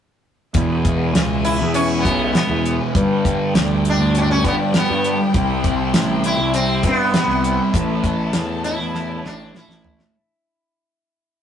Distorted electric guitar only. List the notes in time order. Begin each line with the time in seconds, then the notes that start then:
0.54 E2 B2 E3
2.05 B2 E3
2.09 E2
2.34 E2 B2 E3
2.95 G2 D3 G3
4.43 G2 D3 G3
4.73 G2 D3 G3
5.33 C3 G3 C4
6.83 C3 G3 C4
7.12 C3 G3 C4
7.72 A2 E3
7.77 A3
9.22 A2 E3 A3
9.53 A2 E3 A3